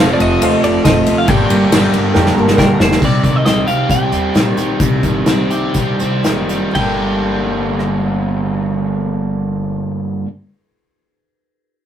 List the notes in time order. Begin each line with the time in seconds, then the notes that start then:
Already playing: F2 C3 F3 A3 C4 F4 F5
0.00 F1 F3 C4 F4 A4 C5 F5
0.14 D5
0.20 F1 D#5, ride
0.41 D#2 F3 C4 F4 A4 C5 F5, ride
0.63 F1 C4 F4 A4 D5, ride
0.84 F1 F3 C4 F4 A4 C5 D#5 F5, kick, snare, ride
1.06 D#2 C4 F4 A4, ride
1.18 F5
1.28 G1 G2 D3 G3 A#3 D4 G4 A#4 D5 G5, kick, ride
1.50 G1 G3 A#3 D4 G4, ride
1.70 G1 G2 D3 G3 A#3 D4 G4 A#4 D5 G5, snare, ride
1.94 G1, ride
2.13 F2 G3 A#3 D4 G4 A#4 D5 G5, snare
2.26 snare
2.34 G1 D4 G4 A#5
2.39 G3 A#3 A5
2.48 snare
2.56 G1 G2 D3 G3 A#3 D4 G4 A#4 D5 G5, kick, snare
2.80 F1 G3 A#3 D4 G4 C5 D5, snare
2.92 snare
3.02 C2 C3 G3 C4 D#4 G4 D5, kick, crash
3.23 C2 D#3 D#4 G4 D5, kick, closed hi-hat
3.27 C4
3.36 D#5
3.46 C2 C3 G3 C4 D#4 G4 D#5, snare, closed hi-hat
3.67 C2 C4 D#4 G4 F5, closed hi-hat
3.89 C2 G3 C4 D#4 G4 G5, kick, closed hi-hat
4.11 D#2 C4, closed hi-hat
4.34 A#2 C3 D#3 G3 C4 D#4 G4, snare, closed hi-hat
4.57 A#1 G3 C4 D#4 G4, closed hi-hat
4.80 C2 C3 G3 C4 D#4 G4, kick, closed hi-hat
5.03 G1 D#3 C4 D#4 G4, kick, closed hi-hat
5.26 C2 C3 G3 C4 D#4 G4, snare, closed hi-hat
5.40 F5
5.50 C4 D#4 G4, closed hi-hat
5.74 C2 G3 C4 D#4 G4, kick, closed hi-hat
5.99 C2 C4, closed hi-hat
6.23 F#1 C3 D#3 G3 C4 D#4 G4, snare, closed hi-hat
6.49 G3 C4 D#4 G4, closed hi-hat
6.71 G2 D3 G5, ride
6.75 G1 G3 A#3 D4 G4, kick
6.81 A#3 D4
6.85 A4
7.79 cross-stick